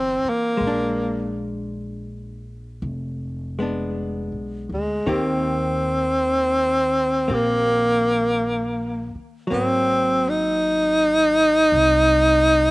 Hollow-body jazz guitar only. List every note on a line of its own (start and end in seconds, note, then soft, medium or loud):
0.00 0.57 E3 soft
0.00 0.62 D4 soft
0.57 3.58 G#3 soft
0.67 3.61 D4 medium
3.59 5.06 G#3 soft
3.59 5.07 B3 soft
3.59 5.07 D4 soft
5.06 9.47 D#3 soft
5.06 7.27 A#3 soft
5.06 7.29 C4 soft
5.06 7.30 G4 soft
7.28 9.49 A#3 soft
7.28 9.50 C4 soft
7.28 9.52 G4 soft
9.47 12.71 F#3 soft
9.47 12.71 A#3 soft
9.52 12.71 C4 soft